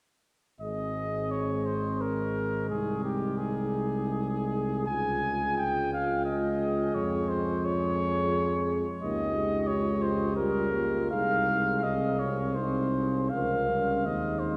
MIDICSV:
0, 0, Header, 1, 6, 480
1, 0, Start_track
1, 0, Key_signature, -4, "major"
1, 0, Tempo, 700117
1, 421, Time_signature, 3, 2, 24, 8
1, 2332, Tempo, 725514
1, 3772, Tempo, 685714
1, 7132, Tempo, 733496
1, 9874, End_track
2, 0, Start_track
2, 0, Title_t, "Cornet"
2, 0, Program_c, 0, 56
2, 418, Note_on_c, 0, 75, 65
2, 901, Note_on_c, 0, 73, 62
2, 911, Note_off_c, 0, 75, 0
2, 1138, Note_on_c, 0, 72, 55
2, 1148, Note_off_c, 0, 73, 0
2, 1378, Note_on_c, 0, 70, 55
2, 1388, Note_off_c, 0, 72, 0
2, 1843, Note_off_c, 0, 70, 0
2, 1847, Note_on_c, 0, 68, 61
2, 2077, Note_off_c, 0, 68, 0
2, 2081, Note_on_c, 0, 67, 54
2, 2311, Note_on_c, 0, 68, 62
2, 2321, Note_off_c, 0, 67, 0
2, 3296, Note_off_c, 0, 68, 0
2, 3299, Note_on_c, 0, 80, 78
2, 3759, Note_off_c, 0, 80, 0
2, 3771, Note_on_c, 0, 79, 68
2, 4004, Note_off_c, 0, 79, 0
2, 4018, Note_on_c, 0, 77, 65
2, 4241, Note_off_c, 0, 77, 0
2, 4245, Note_on_c, 0, 75, 65
2, 4729, Note_on_c, 0, 73, 70
2, 4739, Note_off_c, 0, 75, 0
2, 4969, Note_on_c, 0, 72, 71
2, 4980, Note_off_c, 0, 73, 0
2, 5223, Note_on_c, 0, 73, 84
2, 5233, Note_off_c, 0, 72, 0
2, 6000, Note_off_c, 0, 73, 0
2, 6185, Note_on_c, 0, 75, 77
2, 6638, Note_on_c, 0, 73, 72
2, 6648, Note_off_c, 0, 75, 0
2, 6884, Note_on_c, 0, 72, 72
2, 6894, Note_off_c, 0, 73, 0
2, 7119, Note_off_c, 0, 72, 0
2, 7123, Note_on_c, 0, 70, 70
2, 7608, Note_off_c, 0, 70, 0
2, 7612, Note_on_c, 0, 77, 89
2, 8084, Note_on_c, 0, 75, 70
2, 8094, Note_off_c, 0, 77, 0
2, 8318, Note_on_c, 0, 73, 65
2, 8328, Note_off_c, 0, 75, 0
2, 8555, Note_on_c, 0, 72, 63
2, 8565, Note_off_c, 0, 73, 0
2, 9044, Note_on_c, 0, 77, 72
2, 9053, Note_off_c, 0, 72, 0
2, 9538, Note_on_c, 0, 75, 61
2, 9547, Note_off_c, 0, 77, 0
2, 9760, Note_on_c, 0, 72, 58
2, 9769, Note_off_c, 0, 75, 0
2, 9874, Note_off_c, 0, 72, 0
2, 9874, End_track
3, 0, Start_track
3, 0, Title_t, "French horn section"
3, 0, Program_c, 1, 60
3, 423, Note_on_c, 1, 68, 40
3, 3281, Note_off_c, 1, 68, 0
3, 3303, Note_on_c, 1, 68, 47
3, 6067, Note_off_c, 1, 68, 0
3, 6186, Note_on_c, 1, 67, 53
3, 7600, Note_off_c, 1, 67, 0
3, 7612, Note_on_c, 1, 68, 50
3, 7846, Note_off_c, 1, 68, 0
3, 7854, Note_on_c, 1, 68, 49
3, 8083, Note_off_c, 1, 68, 0
3, 8091, Note_on_c, 1, 68, 43
3, 8552, Note_off_c, 1, 68, 0
3, 8560, Note_on_c, 1, 68, 45
3, 9054, Note_off_c, 1, 68, 0
3, 9060, Note_on_c, 1, 70, 46
3, 9509, Note_off_c, 1, 70, 0
3, 9540, Note_on_c, 1, 63, 40
3, 9874, Note_off_c, 1, 63, 0
3, 9874, End_track
4, 0, Start_track
4, 0, Title_t, "Euphonium"
4, 0, Program_c, 2, 58
4, 423, Note_on_c, 2, 60, 42
4, 1865, Note_on_c, 2, 63, 41
4, 1875, Note_off_c, 2, 60, 0
4, 3308, Note_off_c, 2, 63, 0
4, 3317, Note_on_c, 2, 65, 49
4, 6073, Note_off_c, 2, 65, 0
4, 6192, Note_on_c, 2, 63, 49
4, 6662, Note_on_c, 2, 65, 54
4, 6672, Note_off_c, 2, 63, 0
4, 7618, Note_on_c, 2, 63, 47
4, 7628, Note_off_c, 2, 65, 0
4, 8090, Note_off_c, 2, 63, 0
4, 8094, Note_on_c, 2, 60, 45
4, 8562, Note_on_c, 2, 63, 43
4, 8572, Note_off_c, 2, 60, 0
4, 9062, Note_off_c, 2, 63, 0
4, 9066, Note_on_c, 2, 61, 48
4, 9541, Note_on_c, 2, 60, 46
4, 9550, Note_off_c, 2, 61, 0
4, 9874, Note_off_c, 2, 60, 0
4, 9874, End_track
5, 0, Start_track
5, 0, Title_t, "Trombone"
5, 0, Program_c, 3, 57
5, 417, Note_on_c, 3, 56, 43
5, 3278, Note_off_c, 3, 56, 0
5, 3305, Note_on_c, 3, 56, 47
5, 6070, Note_off_c, 3, 56, 0
5, 6189, Note_on_c, 3, 58, 55
5, 6417, Note_on_c, 3, 56, 52
5, 6428, Note_off_c, 3, 58, 0
5, 7131, Note_on_c, 3, 55, 52
5, 7141, Note_off_c, 3, 56, 0
5, 7364, Note_on_c, 3, 58, 55
5, 7374, Note_off_c, 3, 55, 0
5, 7619, Note_on_c, 3, 56, 54
5, 7629, Note_off_c, 3, 58, 0
5, 8091, Note_off_c, 3, 56, 0
5, 8095, Note_on_c, 3, 56, 50
5, 8571, Note_on_c, 3, 60, 50
5, 8581, Note_off_c, 3, 56, 0
5, 9066, Note_off_c, 3, 60, 0
5, 9070, Note_on_c, 3, 53, 46
5, 9301, Note_on_c, 3, 55, 45
5, 9311, Note_off_c, 3, 53, 0
5, 9539, Note_on_c, 3, 56, 48
5, 9549, Note_off_c, 3, 55, 0
5, 9874, Note_off_c, 3, 56, 0
5, 9874, End_track
6, 0, Start_track
6, 0, Title_t, "Tuba"
6, 0, Program_c, 4, 58
6, 410, Note_on_c, 4, 32, 46
6, 1855, Note_on_c, 4, 36, 51
6, 1865, Note_off_c, 4, 32, 0
6, 3298, Note_off_c, 4, 36, 0
6, 3302, Note_on_c, 4, 37, 57
6, 4693, Note_off_c, 4, 37, 0
6, 4728, Note_on_c, 4, 41, 57
6, 6061, Note_off_c, 4, 41, 0
6, 6180, Note_on_c, 4, 37, 60
6, 7597, Note_off_c, 4, 37, 0
6, 7623, Note_on_c, 4, 36, 56
6, 9040, Note_off_c, 4, 36, 0
6, 9063, Note_on_c, 4, 37, 55
6, 9539, Note_on_c, 4, 39, 49
6, 9549, Note_off_c, 4, 37, 0
6, 9874, Note_off_c, 4, 39, 0
6, 9874, End_track
0, 0, End_of_file